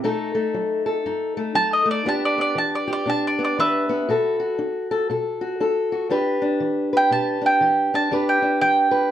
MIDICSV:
0, 0, Header, 1, 3, 480
1, 0, Start_track
1, 0, Key_signature, 1, "minor"
1, 0, Tempo, 504626
1, 34, Time_signature, 4, 2, 24, 8
1, 8667, End_track
2, 0, Start_track
2, 0, Title_t, "Mandolin"
2, 0, Program_c, 0, 25
2, 1478, Note_on_c, 0, 81, 97
2, 1634, Note_off_c, 0, 81, 0
2, 1647, Note_on_c, 0, 75, 72
2, 1799, Note_off_c, 0, 75, 0
2, 1816, Note_on_c, 0, 74, 85
2, 1964, Note_off_c, 0, 74, 0
2, 1983, Note_on_c, 0, 81, 87
2, 2128, Note_off_c, 0, 81, 0
2, 2143, Note_on_c, 0, 74, 81
2, 2282, Note_off_c, 0, 74, 0
2, 2294, Note_on_c, 0, 74, 86
2, 2443, Note_off_c, 0, 74, 0
2, 2457, Note_on_c, 0, 81, 82
2, 2605, Note_off_c, 0, 81, 0
2, 2619, Note_on_c, 0, 74, 69
2, 2766, Note_off_c, 0, 74, 0
2, 2784, Note_on_c, 0, 74, 84
2, 2929, Note_off_c, 0, 74, 0
2, 2945, Note_on_c, 0, 81, 91
2, 3089, Note_off_c, 0, 81, 0
2, 3113, Note_on_c, 0, 74, 82
2, 3254, Note_off_c, 0, 74, 0
2, 3277, Note_on_c, 0, 74, 81
2, 3416, Note_off_c, 0, 74, 0
2, 3421, Note_on_c, 0, 71, 78
2, 3427, Note_on_c, 0, 76, 81
2, 3880, Note_off_c, 0, 76, 0
2, 4335, Note_off_c, 0, 71, 0
2, 6628, Note_on_c, 0, 79, 95
2, 6770, Note_off_c, 0, 79, 0
2, 6777, Note_on_c, 0, 81, 80
2, 7079, Note_off_c, 0, 81, 0
2, 7096, Note_on_c, 0, 79, 78
2, 7553, Note_off_c, 0, 79, 0
2, 7563, Note_on_c, 0, 81, 87
2, 7871, Note_off_c, 0, 81, 0
2, 7885, Note_on_c, 0, 79, 79
2, 8183, Note_off_c, 0, 79, 0
2, 8194, Note_on_c, 0, 79, 91
2, 8667, Note_off_c, 0, 79, 0
2, 8667, End_track
3, 0, Start_track
3, 0, Title_t, "Steel-string acoustic guitar"
3, 0, Program_c, 1, 25
3, 34, Note_on_c, 1, 47, 71
3, 37, Note_on_c, 1, 57, 61
3, 43, Note_on_c, 1, 63, 65
3, 49, Note_on_c, 1, 69, 70
3, 319, Note_off_c, 1, 57, 0
3, 330, Note_on_c, 1, 57, 54
3, 479, Note_off_c, 1, 47, 0
3, 517, Note_on_c, 1, 54, 61
3, 806, Note_off_c, 1, 69, 0
3, 817, Note_on_c, 1, 69, 65
3, 961, Note_off_c, 1, 54, 0
3, 996, Note_off_c, 1, 63, 0
3, 1006, Note_on_c, 1, 42, 69
3, 1008, Note_on_c, 1, 63, 62
3, 1291, Note_off_c, 1, 57, 0
3, 1303, Note_on_c, 1, 57, 57
3, 1446, Note_off_c, 1, 42, 0
3, 1464, Note_off_c, 1, 63, 0
3, 1472, Note_on_c, 1, 54, 65
3, 1478, Note_on_c, 1, 63, 63
3, 1753, Note_off_c, 1, 57, 0
3, 1764, Note_on_c, 1, 57, 60
3, 1920, Note_off_c, 1, 54, 0
3, 1937, Note_off_c, 1, 63, 0
3, 1941, Note_off_c, 1, 69, 0
3, 1951, Note_on_c, 1, 40, 77
3, 1955, Note_off_c, 1, 57, 0
3, 1959, Note_on_c, 1, 59, 64
3, 1962, Note_on_c, 1, 62, 65
3, 1967, Note_on_c, 1, 67, 68
3, 2260, Note_off_c, 1, 59, 0
3, 2264, Note_on_c, 1, 59, 60
3, 2401, Note_off_c, 1, 40, 0
3, 2428, Note_on_c, 1, 52, 67
3, 2724, Note_off_c, 1, 67, 0
3, 2735, Note_on_c, 1, 67, 71
3, 2879, Note_off_c, 1, 52, 0
3, 2908, Note_on_c, 1, 47, 67
3, 2916, Note_off_c, 1, 62, 0
3, 2920, Note_on_c, 1, 62, 61
3, 3217, Note_off_c, 1, 59, 0
3, 3221, Note_on_c, 1, 59, 58
3, 3359, Note_off_c, 1, 47, 0
3, 3412, Note_on_c, 1, 52, 63
3, 3420, Note_off_c, 1, 62, 0
3, 3424, Note_on_c, 1, 62, 61
3, 3699, Note_off_c, 1, 59, 0
3, 3703, Note_on_c, 1, 59, 61
3, 3851, Note_off_c, 1, 52, 0
3, 3860, Note_off_c, 1, 67, 0
3, 3887, Note_on_c, 1, 47, 76
3, 3891, Note_off_c, 1, 62, 0
3, 3895, Note_on_c, 1, 66, 66
3, 3904, Note_on_c, 1, 69, 69
3, 3933, Note_off_c, 1, 59, 0
3, 4170, Note_off_c, 1, 66, 0
3, 4182, Note_on_c, 1, 66, 61
3, 4328, Note_off_c, 1, 47, 0
3, 4362, Note_on_c, 1, 63, 58
3, 4660, Note_off_c, 1, 69, 0
3, 4671, Note_on_c, 1, 69, 72
3, 4806, Note_off_c, 1, 63, 0
3, 4845, Note_off_c, 1, 69, 0
3, 4847, Note_on_c, 1, 47, 61
3, 4857, Note_on_c, 1, 69, 64
3, 5135, Note_off_c, 1, 66, 0
3, 5147, Note_on_c, 1, 66, 59
3, 5288, Note_off_c, 1, 47, 0
3, 5323, Note_off_c, 1, 69, 0
3, 5331, Note_on_c, 1, 63, 57
3, 5335, Note_on_c, 1, 69, 62
3, 5620, Note_off_c, 1, 66, 0
3, 5632, Note_on_c, 1, 66, 53
3, 5770, Note_off_c, 1, 63, 0
3, 5786, Note_off_c, 1, 69, 0
3, 5787, Note_off_c, 1, 66, 0
3, 5798, Note_on_c, 1, 40, 71
3, 5806, Note_on_c, 1, 62, 61
3, 5811, Note_on_c, 1, 67, 65
3, 5817, Note_on_c, 1, 71, 77
3, 6100, Note_off_c, 1, 62, 0
3, 6104, Note_on_c, 1, 62, 60
3, 6243, Note_off_c, 1, 40, 0
3, 6281, Note_on_c, 1, 52, 58
3, 6587, Note_off_c, 1, 71, 0
3, 6590, Note_on_c, 1, 71, 66
3, 6724, Note_off_c, 1, 52, 0
3, 6758, Note_on_c, 1, 47, 67
3, 6764, Note_off_c, 1, 67, 0
3, 6768, Note_on_c, 1, 67, 61
3, 7042, Note_off_c, 1, 62, 0
3, 7054, Note_on_c, 1, 62, 55
3, 7202, Note_off_c, 1, 47, 0
3, 7236, Note_on_c, 1, 52, 65
3, 7243, Note_off_c, 1, 67, 0
3, 7247, Note_on_c, 1, 67, 55
3, 7533, Note_off_c, 1, 62, 0
3, 7552, Note_on_c, 1, 62, 60
3, 7680, Note_off_c, 1, 52, 0
3, 7703, Note_off_c, 1, 71, 0
3, 7705, Note_off_c, 1, 62, 0
3, 7715, Note_on_c, 1, 40, 79
3, 7721, Note_on_c, 1, 62, 63
3, 7724, Note_off_c, 1, 67, 0
3, 7727, Note_on_c, 1, 67, 71
3, 7735, Note_on_c, 1, 71, 74
3, 7998, Note_off_c, 1, 62, 0
3, 8010, Note_on_c, 1, 62, 55
3, 8158, Note_off_c, 1, 40, 0
3, 8195, Note_on_c, 1, 52, 66
3, 8467, Note_off_c, 1, 71, 0
3, 8478, Note_on_c, 1, 71, 69
3, 8637, Note_off_c, 1, 52, 0
3, 8667, Note_off_c, 1, 62, 0
3, 8667, Note_off_c, 1, 67, 0
3, 8667, Note_off_c, 1, 71, 0
3, 8667, End_track
0, 0, End_of_file